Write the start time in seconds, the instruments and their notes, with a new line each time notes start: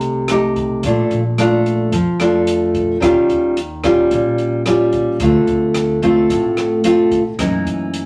Already playing: upright bass C2, nylon-string guitar C3 A3 D#4 G4
0.01 closed hi-hat
0.28 nylon-string guitar A3 D#4 G4, cross-stick, closed hi-hat
0.56 kick, closed hi-hat
0.83 upright bass A#1, nylon-string guitar A#2 A3 D4 F4, kick, closed hi-hat
1.10 upright bass A#1, closed hi-hat
1.38 nylon-string guitar A3 D4 F4, cross-stick, closed hi-hat
1.66 closed hi-hat
1.92 upright bass F2, nylon-string guitar F3, kick, closed hi-hat
2.20 nylon-string guitar A3 D4 F4, cross-stick, closed hi-hat
2.47 closed hi-hat
2.74 kick, closed hi-hat
3.00 upright bass D#2, nylon-string guitar D#3 G3 C#4 F4, kick, cross-stick, closed hi-hat
3.29 upright bass D#2, closed hi-hat
3.57 closed hi-hat
3.84 nylon-string guitar G3 C#4 F4, kick, cross-stick, closed hi-hat
4.11 upright bass A#1, nylon-string guitar A#2, kick, closed hi-hat
4.38 closed hi-hat
4.66 nylon-string guitar G3 C#4 F4, cross-stick, closed hi-hat
4.92 kick, closed hi-hat
5.20 upright bass D2, nylon-string guitar D3 A3 C4 F4, kick, closed hi-hat
5.46 upright bass D2, closed hi-hat
5.74 cross-stick, closed hi-hat
6.02 nylon-string guitar A3 C4 F4, closed hi-hat
6.30 upright bass A1, nylon-string guitar A2, kick, closed hi-hat
6.57 cross-stick, closed hi-hat
6.84 nylon-string guitar A3 C4 F4, closed hi-hat
7.11 kick, closed hi-hat
7.39 upright bass F#2, nylon-string guitar F#2 E3 A#3 D#4, kick, cross-stick, closed hi-hat
7.65 upright bass F#2, closed hi-hat
7.94 closed hi-hat